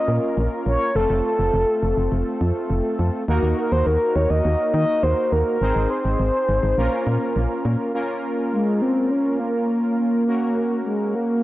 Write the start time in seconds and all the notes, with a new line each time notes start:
Already playing: A#3 C#4 F4 A#4 D#5
0.08 A#2
0.37 A#1
0.66 A#1 C#5
0.95 F1 A3 C4 F4 A4
1.10 F1
1.25 A4
1.39 F1
1.54 F1
1.83 F1
1.97 F1
2.12 F1
2.41 F2
2.70 F1
2.99 F2
3.28 D#2 A#3 D#4 F#4 A#4
3.43 D#2
3.57 A#4
3.72 D#2 C5
3.86 D#2 A#4
4.16 D#2 C#5
4.30 D#2 D#5
4.45 D#2
4.74 D#3 D#5
5.03 D#2 C5
5.32 D#2 A#4
5.46 A#4
5.61 G#1 C4 D#4 G#4 C5
5.76 G#1
5.90 C5
6.05 G#1
6.19 G#1
6.49 G#1
6.63 G#1
6.78 A#1 A#3 C#4 F4 A#4
7.07 A#2
7.36 A#1
7.65 A#2
7.94 A#3 C#4 F4 A#4
8.52 G#3
8.81 C4
9.10 C#4
9.39 A#3
9.98 A#3
10.27 A#3 C#4 F#4 A#4
10.86 G#3
11.15 A#3